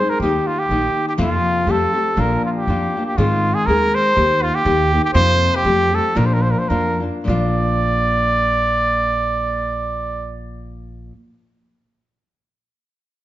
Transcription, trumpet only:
0.00 0.11 C5 medium
0.10 0.20 A#4 medium
0.21 0.48 G4 medium
0.47 0.61 F4 medium
0.59 1.08 G4 medium
1.09 1.14 G4 medium
1.21 1.72 F4 medium
1.71 2.22 A4 medium
2.20 2.45 A#4 medium
2.45 2.50 F4 medium
2.56 3.03 G4 medium
3.06 3.19 G4 medium
3.17 3.56 F4 medium
3.54 3.68 G#4 medium
3.66 3.96 A#4 medium
3.95 4.44 C5 loud
4.42 4.57 F4 medium
4.55 5.04 G4 medium
5.05 5.10 G4 medium
5.14 5.57 C5 loud
5.56 5.97 G4 loud
5.95 6.18 A4 medium
6.17 6.28 A#4 medium
6.26 6.35 C5 medium
6.34 6.44 A#4 medium
6.42 6.53 C5 medium
6.51 6.60 A#4 medium
6.59 6.70 C5 medium
6.69 7.01 A#4 medium
7.26 10.39 D5 medium

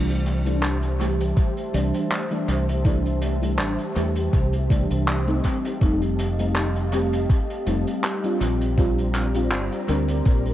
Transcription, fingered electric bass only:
0.00 1.32 C2 medium
1.74 1.91 C2 medium
2.48 3.59 C2 medium
3.59 3.76 A1 loud
3.96 4.28 E2 medium
4.33 4.85 C2 medium
4.91 5.40 C2 loud
5.81 7.25 F1 loud
7.67 7.83 F1 medium
8.41 9.52 A#1 medium
9.52 9.69 G1 loud
9.89 10.20 D2 medium
10.26 10.54 A#1 medium

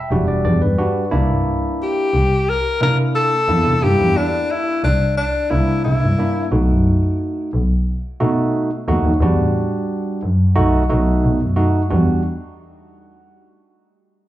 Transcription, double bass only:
0.11 0.44 E1 medium
0.45 0.60 E2 medium
0.62 1.06 G2 medium
1.12 1.27 C2 medium
1.30 1.59 G2 medium
2.13 2.43 C2 medium
2.81 3.40 C3 medium
3.47 3.63 E2 medium
3.66 3.80 C3 medium
3.83 3.97 G2 medium
3.99 4.29 E2 medium
4.83 5.13 C2 medium
5.51 5.85 C2 medium
5.85 6.00 C3 medium
6.02 6.46 G2 medium
6.52 6.66 B1 loud
6.69 6.98 F#2 medium
7.53 7.82 B1 medium
8.20 8.79 B2 loud
8.88 9.02 D#2 medium
9.05 9.19 D#2 medium
9.20 9.36 E2 loud
9.38 9.67 A2 medium
10.23 10.37 F#2 medium
10.57 10.86 B1 medium
10.91 11.23 B1 loud
11.24 11.38 B2 medium
11.41 11.85 F#2 medium
11.91 12.22 E2 loud

